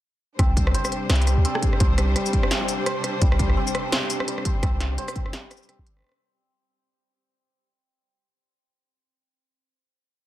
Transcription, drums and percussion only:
0.39 kick, cross-stick, closed hi-hat
0.57 kick, closed hi-hat
0.67 cross-stick
0.75 closed hi-hat
0.85 cross-stick, shaker
0.92 closed hi-hat
1.10 cross-stick, snare, closed hi-hat
1.15 closed hi-hat
1.22 closed hi-hat
1.27 cross-stick, closed hi-hat, shaker
1.45 closed hi-hat
1.55 cross-stick
1.63 kick, closed hi-hat
1.73 cross-stick
1.80 kick, closed hi-hat
1.98 cross-stick, closed hi-hat
2.16 cross-stick, closed hi-hat
2.26 shaker
2.33 kick, closed hi-hat
2.43 cross-stick
2.51 snare, closed hi-hat
2.61 cross-stick
2.69 closed hi-hat, shaker
2.86 cross-stick, closed hi-hat
3.04 cross-stick, closed hi-hat
3.22 kick, closed hi-hat
3.32 cross-stick
3.39 kick, closed hi-hat
3.50 cross-stick
3.67 shaker
3.75 cross-stick, closed hi-hat
3.92 cross-stick, snare, closed hi-hat
4.10 closed hi-hat, shaker
4.20 cross-stick
4.28 closed hi-hat
4.38 cross-stick
4.45 kick, closed hi-hat
4.63 kick, cross-stick, closed hi-hat
4.80 cross-stick, snare, closed hi-hat
4.98 closed hi-hat
5.08 cross-stick, shaker
5.16 kick, closed hi-hat
5.26 cross-stick
5.33 snare, closed hi-hat
5.51 cross-stick, closed hi-hat, shaker
5.57 shaker
5.63 shaker
5.69 cross-stick, closed hi-hat
5.87 closed hi-hat
5.97 cross-stick
5.99 cross-stick
6.00 cross-stick
6.02 cross-stick
6.04 cross-stick
6.07 cross-stick
6.09 cross-stick
6.12 cross-stick

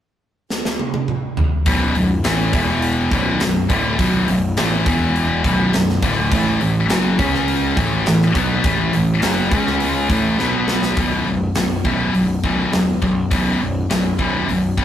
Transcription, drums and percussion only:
0.50 snare
0.65 snare
0.79 high tom
0.94 high tom
1.08 mid tom
1.37 floor tom
1.66 kick, open hi-hat
1.95 open hi-hat
2.24 snare, open hi-hat
2.53 kick, open hi-hat
2.82 open hi-hat
3.11 kick, open hi-hat
3.40 snare, open hi-hat
3.70 kick, open hi-hat
3.99 kick, open hi-hat
4.28 open hi-hat
4.57 snare, open hi-hat
4.86 kick, open hi-hat
5.16 open hi-hat
5.44 kick, open hi-hat
5.73 snare, open hi-hat
5.89 snare
6.03 kick, open hi-hat
6.32 kick, open hi-hat
6.61 open hi-hat
6.90 snare, open hi-hat
7.19 kick, open hi-hat
7.34 snare
7.48 open hi-hat
7.77 kick, open hi-hat
8.06 snare, open hi-hat
8.22 snare
8.35 kick, open hi-hat
8.64 kick, open hi-hat
8.93 open hi-hat
9.22 snare, open hi-hat
9.52 kick, open hi-hat
9.67 snare
9.80 open hi-hat
10.10 kick, open hi-hat
10.39 snare
10.68 snare
10.83 snare
10.97 kick, open hi-hat
11.55 snare, open hi-hat
11.85 kick
12.14 open hi-hat
12.44 kick
12.73 snare, open hi-hat
13.02 kick
13.31 kick, open hi-hat
13.90 snare, open hi-hat
14.19 kick
14.49 open hi-hat
14.78 kick

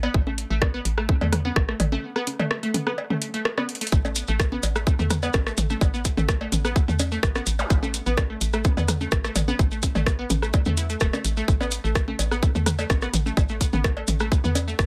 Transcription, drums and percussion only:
0.03 cowbell
0.14 kick
0.27 high conga
0.38 closed hi-hat
0.62 kick, cross-stick, cowbell, high conga
0.85 closed hi-hat
0.98 cross-stick
1.09 kick, high conga
1.21 mid tom, cowbell
1.33 cross-stick, closed hi-hat, mid tom
1.45 high conga
1.56 kick, cross-stick
1.69 cross-stick
1.80 closed hi-hat, mid tom, cowbell
1.92 high conga
2.16 cross-stick
2.27 closed hi-hat, high conga
2.40 mid tom, cowbell
2.51 cross-stick
2.63 closed hi-hat
2.74 closed hi-hat, mid tom, high conga
2.87 cross-stick
2.98 cowbell
3.10 mid tom, high conga
3.22 closed hi-hat
3.34 closed hi-hat
3.45 cross-stick
3.58 cross-stick, cowbell, high conga
3.69 closed hi-hat
3.75 closed hi-hat
3.81 closed hi-hat
3.87 closed hi-hat
3.92 kick, maracas
4.05 cowbell, high conga, maracas
4.15 closed hi-hat, maracas
4.27 maracas
4.40 kick, cross-stick, maracas
4.52 high conga
4.63 closed hi-hat, cowbell, maracas
4.76 cross-stick, maracas
4.87 kick, high conga, maracas
4.99 mid tom, maracas
5.10 cross-stick, closed hi-hat, mid tom, maracas
5.23 cowbell, maracas
5.33 kick, cross-stick, high conga, maracas
5.47 cross-stick, maracas
5.57 closed hi-hat, mid tom, maracas
5.70 high conga, maracas
5.81 kick, cowbell, maracas
5.94 maracas
6.05 kick, closed hi-hat, maracas
6.17 mid tom, high conga, maracas
6.29 kick, cross-stick, maracas
6.41 cowbell
6.52 closed hi-hat, mid tom, high conga, maracas
6.65 cross-stick, maracas
6.76 kick, maracas
6.88 mid tom, maracas
6.99 closed hi-hat, cowbell, high conga, maracas
7.12 maracas
7.23 kick, cross-stick, maracas
7.35 cross-stick, high conga, maracas
7.46 closed hi-hat, maracas
7.59 cowbell, maracas
7.70 kick, maracas
7.83 high conga, maracas
7.94 closed hi-hat, maracas
8.06 maracas
8.17 kick, cross-stick, cowbell, high conga, maracas
8.41 closed hi-hat, maracas
8.53 cross-stick, maracas
8.64 kick, high conga, maracas
8.77 mid tom, cowbell, maracas
8.88 cross-stick, closed hi-hat, mid tom, maracas
9.01 high conga, maracas
9.12 kick, cross-stick, maracas
9.24 cross-stick, maracas
9.36 closed hi-hat, mid tom, cowbell, maracas
9.48 high conga, maracas
9.59 kick, maracas
9.71 maracas
9.82 kick, closed hi-hat, high conga, maracas
9.95 mid tom, cowbell, maracas
10.06 kick, cross-stick, maracas
10.30 closed hi-hat, mid tom, high conga, maracas
10.42 cross-stick, maracas
10.53 kick, cowbell, maracas
10.65 mid tom, high conga, maracas
10.77 closed hi-hat, maracas
10.90 closed hi-hat, maracas
11.00 kick, cross-stick, maracas
11.13 cross-stick, cowbell, high conga, maracas
11.25 closed hi-hat, maracas
11.37 maracas
11.48 kick, maracas
11.61 cowbell, high conga, maracas
11.71 closed hi-hat, maracas
11.85 maracas
11.95 kick, cross-stick, maracas
12.08 high conga
12.19 closed hi-hat, cowbell, maracas
12.31 cross-stick, maracas
12.43 kick, high conga, maracas
12.55 mid tom, maracas
12.66 cross-stick, closed hi-hat, mid tom, maracas
12.79 cowbell, maracas
12.90 kick, cross-stick, high conga, maracas
13.02 cross-stick, maracas
13.14 closed hi-hat, mid tom, maracas
13.26 high conga, maracas
13.37 kick, cowbell, maracas
13.49 maracas
13.61 kick, closed hi-hat, maracas
13.73 mid tom, high conga, maracas
13.84 kick, cross-stick, maracas
13.97 cowbell
14.07 closed hi-hat, mid tom, high conga, maracas
14.19 cross-stick, maracas
14.32 kick, maracas
14.44 mid tom, maracas
14.55 closed hi-hat, cowbell, high conga, maracas
14.68 maracas
14.79 kick, cross-stick, maracas

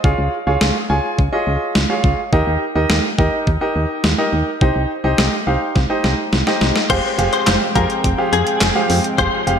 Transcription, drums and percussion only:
0.04 kick
0.61 snare
1.19 kick
1.75 snare
2.04 kick
2.33 kick
2.90 snare
3.19 kick
3.47 kick
4.04 snare
4.61 kick
5.18 snare
5.76 kick, snare
6.04 snare
6.33 snare
6.47 snare
6.61 snare
6.76 snare
6.90 kick, closed hi-hat, crash
7.19 closed hi-hat
7.33 closed hi-hat
7.47 snare, clap, closed hi-hat
7.76 kick, closed hi-hat
7.90 closed hi-hat
8.04 kick, closed hi-hat
8.33 closed hi-hat
8.47 closed hi-hat
8.61 snare, clap, closed hi-hat
8.90 open hi-hat
9.04 closed hi-hat
9.18 kick, closed hi-hat
9.47 closed hi-hat

